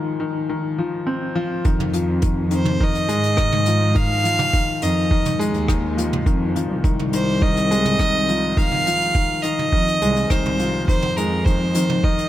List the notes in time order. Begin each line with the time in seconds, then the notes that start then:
Already playing: D#3 F3 G#3
0.20 D#3
0.49 D#3
0.78 F3
1.07 C4
1.35 F3
1.65 F2 D#3, kick, closed hi-hat
1.80 mid tom
1.93 F3, closed hi-hat
2.22 D#3, kick, closed hi-hat
2.51 D#3 C5, closed hi-hat
2.65 mid tom
2.80 D#3 D#5, kick
2.95 closed hi-hat
3.08 G#2 G#3, closed hi-hat
3.23 closed hi-hat
3.37 D#3, kick, cross-stick, closed hi-hat
3.52 mid tom
3.66 F3, closed hi-hat
3.95 D#3 F5, kick, closed hi-hat
4.24 F3, closed hi-hat
4.39 closed hi-hat, mid tom
4.53 D#3, kick, closed hi-hat
4.82 F2 D#3 D#5, closed hi-hat
5.11 D#3, kick
5.25 closed hi-hat, mid tom
5.39 G#3, closed hi-hat
5.54 D#2, closed hi-hat
5.68 D#3, kick, cross-stick, closed hi-hat
5.97 F3, closed hi-hat
6.13 mid tom
6.26 F2 D#3, kick, closed hi-hat
6.55 F3, closed hi-hat
6.70 C2
6.84 D#3, kick, closed hi-hat
6.99 mid tom
7.13 D#3 C5, closed hi-hat
7.42 D#3 D#5, kick
7.57 closed hi-hat
7.71 G#3, closed hi-hat
7.85 closed hi-hat, mid tom
7.99 D#3, kick, cross-stick, closed hi-hat
8.29 F3, closed hi-hat
8.57 D#3 F5, kick, closed hi-hat
8.72 mid tom
8.86 F3, closed hi-hat
9.01 closed hi-hat
9.15 D#3, kick, closed hi-hat
9.43 D#3 D#5, closed hi-hat
9.59 mid tom
9.72 F2 D#3, kick
9.88 closed hi-hat
10.01 C2 G#3, closed hi-hat
10.16 closed hi-hat
10.30 C2 D#3 C5, kick, cross-stick, closed hi-hat
10.46 mid tom
10.59 F3, closed hi-hat
10.87 F2 D#3 C5, kick, closed hi-hat
11.02 mid tom
11.17 G#3 A#4, closed hi-hat
11.45 D#3 C5, kick, closed hi-hat
11.75 D#3, closed hi-hat
11.89 mid tom
12.04 D#3 D#5, kick
12.18 closed hi-hat